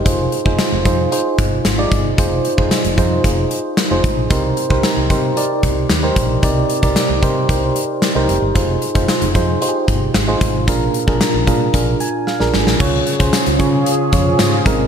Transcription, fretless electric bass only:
\new Staff \with { instrumentName = "Fretless electric bass" } { \clef bass \time 4/4 \key f \dorian \tempo 4 = 113 f,,8 r16 f,,16 r16 f,,16 f,8 r8 g,,8 aes,,8 g,,8 | f,,8 r16 f,,16 r16 f,,16 f,8 f,,8 r8. f,,16 aes,,16 bes,,16 | c,8 r16 c,16 r16 c,16 c8 r8 c,8 ees,8 bes,,8 | c,8 r16 c,16 r16 c,16 c8 c,8 r8. c,16 f,,16 g,,16 |
f,,8 r16 f,,16 r16 f,,16 f,8 r8 g,,8 aes,,8 aes,,8 | bes,,8 r16 bes,,16 r16 bes,,16 bes,8 bes,,8 r8. bes,,16 aes,,16 bes,,16 | des,8 r16 des,16 r16 des,16 des8 r8 f,8 aes,8 aes,,8 | }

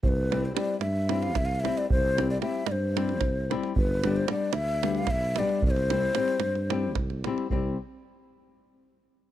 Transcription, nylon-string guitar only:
\new Staff \with { instrumentName = "Nylon-string guitar" } { \time 7/8 \key c \major \tempo 4 = 113 r8 <g c' e' g'>8 <g c' e' g'>8 r8 <g c' e' g'>8 r8 <g c' e' g'>8 | r8 <g c' e' g'>8 <g c' e' g'>8 r8 <g c' e' g'>8 r8 <g c' e' g'>8 | r8 <g b d' g'>8 <g b d' g'>8 r8 <g b d' g'>8 r8 <g b d' g'>8 | r8 <g c' e' g'>8 <g c' e' g'>8 r8 <g c' e' g'>8 r8 <g c' e' g'>8 |
<g c' e' g'>8 r2. | }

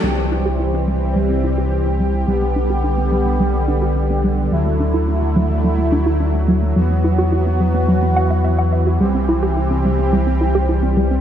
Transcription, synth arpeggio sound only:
\new Staff \with { instrumentName = "Synth arpeggio sound" } { \time 4/4 \key c \lydian \tempo 4 = 107 g16 c'16 e'16 g'16 e'16 c'16 g16 c'16 g16 c'16 e'16 g'16 e'16 c'16 g16 c'16 | g16 b16 d'16 g'16 d'16 b16 g16 b16 g16 b16 d'16 g'16 d'16 b16 g16 b16 | fis16 a16 d'16 e'16 d'16 a16 fis16 a16 fis16 a16 d'16 e'16 d'16 a16 fis16 a16 | fis16 b16 e'16 fis'16 e'16 b16 fis16 b16 fis16 b16 fis''16 e''16 e''16 fis''16 e''16 fis'16 |
g16 c'16 e'16 g'16 e'16 c'16 g16 c'16 g16 c'16 e'16 g'16 e'16 c'16 g16 c'16 | }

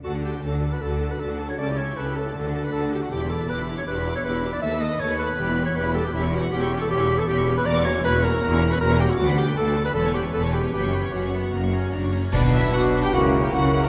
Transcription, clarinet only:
\new Staff \with { instrumentName = "Clarinet" } { \time 4/4 \key d \major \tempo 4 = 157 fis'8 g'8 a'8. b'16 a'8. b'16 a'8. cis''16 | d''8 cis''8 b'8 a'4~ a'16 b'16 a'8 g'16 fis'16 | g'8 a'8 b'8. cis''16 b'8. cis''16 b'8. d''16 | e''8 dis''8 cis''8 b'4~ b'16 cis''16 b'8 a'16 g'16 |
\key b \minor e'8 fis'8 g'8. a'16 g'8. a'16 g'8. b'16 | d''8 cis''8 b'8 ais'4~ ais'16 b'16 ais'8 g'16 fis'16 | fis'8 g'8 a'8. b'16 a'8 g'8 a'8 g'8 | g'4 fis'2~ fis'8 r8 |
d'2 e'2 | }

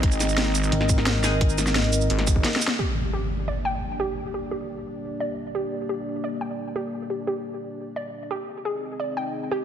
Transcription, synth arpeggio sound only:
\new Staff \with { instrumentName = "Synth arpeggio sound" } { \time 4/4 \key g \phrygian \tempo 4 = 174 r1 | r1 | g'8 r8 g'8 r8 d''8 g''8 r8 g'8 | r8 g'8 g'8 r4. d''8 r8 |
g'8 r8 g'8 r8 d''8 g''8 r8 g'8 | r8 g'8 g'8 r4. d''8 r8 | g'8 r8 aes'8 r8 d''8 g''8 r8 g'8 | }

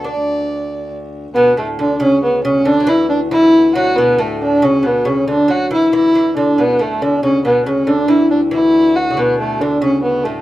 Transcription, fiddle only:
\new Staff \with { instrumentName = "Fiddle" } { \time 6/8 \key d \major \tempo 4. = 92 d''2 r4 | b8 a8 d'8 cis'8 b8 cis'8 | d'8 e'8 d'8 e'4 fis'8 | b8 a8 d'8 cis'8 b8 cis'8 |
d'8 fis'8 e'8 e'4 d'8 | b8 a8 d'8 cis'8 b8 cis'8 | d'8 e'8 d'8 e'4 fis'8 | b8 a8 d'8 cis'8 b8 a8 | }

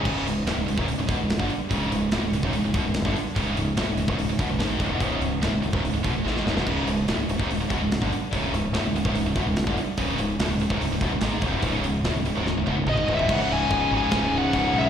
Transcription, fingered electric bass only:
\new Staff \with { instrumentName = "Fingered electric bass" } { \clef bass \time 4/4 \key cis \minor \tempo 4 = 145 cis,,8 cis,,8 d,,16 cis,,16 cis,,16 cis,,16 cis,,16 cis,,16 e,,16 cis,,8 g,,16 r8 | cis,,8 cis,,8 d,,16 cis,,16 cis,,16 cis,,16 cis,,16 cis,,16 e,,16 cis,,8 g,,16 r8 | cis,,8 cis,,8 d,,16 cis,,16 cis,,16 cis,,16 cis,,16 cis,,16 e,,16 cis,,16 gis,,8 cis,,16 e,,16 | cis,,8 cis,,8 d,,16 cis,,16 cis,,16 cis,,16 cis,,16 cis,,16 e,,16 cis,,16 gis,,8 cis,,16 e,,16 |
cis,,8 cis,,8 d,,16 cis,,16 cis,,16 cis,,16 cis,,16 cis,,16 e,,16 cis,,8 g,,16 r8 | cis,,8 cis,,8 d,,16 cis,,16 cis,,16 cis,,16 cis,,16 cis,,16 e,,16 cis,,8 g,,16 r8 | cis,,8 cis,,8 d,,16 cis,,16 cis,,16 cis,,16 cis,,16 cis,,16 e,,16 cis,,16 gis,,8 cis,,16 e,,16 | cis,,8 cis,,8 d,,16 cis,,16 cis,,16 cis,,16 cis,,16 cis,,16 e,,16 cis,,16 gis,,8 cis,,16 e,,16 |
cis,,8 cis,,8 cis,,8 gis,,8 cis,,8 cis,,8 cis,,8 b,,8 | }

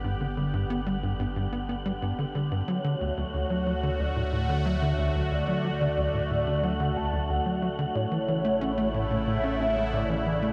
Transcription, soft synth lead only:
\new Staff \with { instrumentName = "Soft synth lead" } { \time 4/4 \key d \major \tempo 4 = 91 r1 | cis''2 d''8 fis''8 e''4 | d''2 fis''8 a''8 fis''4 | cis''2 e''4 d''4 | }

